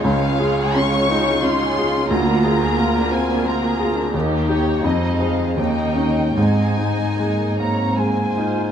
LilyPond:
<<
  \new Staff \with { instrumentName = "Flute" } { \time 3/4 \key aes \major \tempo 4 = 85 r2. | r2. | r2. | r4. bes''8 aes''4 | }
  \new Staff \with { instrumentName = "Violin section" } { \time 3/4 \key aes \major f''4 des'''4 c'''4 | bes''4. aes''8 bes''4 | r8 des''8 ees''8 f''8 g''4 | aes''4. bes''8 aes''4 | }
  \new Staff \with { instrumentName = "Violin section" } { \time 3/4 \key aes \major << { des''2. | bes'2. | bes'4 ees''4 ees''4 | ees''4. des''8 c''4 | } \\ { aes16 des'16 f'16 aes'16 f'16 des'16 aes16 des'16 f'16 aes'16 f'16 des'16 | bes16 d'16 f'16 aes'16 f'16 d'16 bes16 d'16 f'16 aes'16 f'16 d'16 | g'4 ees'4 ees'4 | ees'4. r4. | } >> }
  \new Staff \with { instrumentName = "Grand piano" } { \time 3/4 \key aes \major des,8 aes'8 des'8 ees'8 des'8 aes'8 | d,8 aes'8 bes8 c'8 bes8 aes'8 | ees,8 <ees' g'>8 f,8 <c' aes'>8 ees,8 <des' ees'>8 | aes,8 ees'8 aes8 bes8 aes8 ees'8 | }
  \new Staff \with { instrumentName = "Viola section" } { \time 3/4 \key aes \major << { f'2.~ | f'2. | ees'4 c'4 des'4 | c'4 bes8 c'4 f'8 | } \\ { aes2. | bes2. | bes4 aes4 bes4 | aes4 r2 | } >> }
  \new Staff \with { instrumentName = "Cello section" } { \clef bass \time 3/4 \key aes \major des,4 r2 | d,4 r2 | ees,4 f,4 ees,4 | aes,2~ aes,8 r8 | }
>>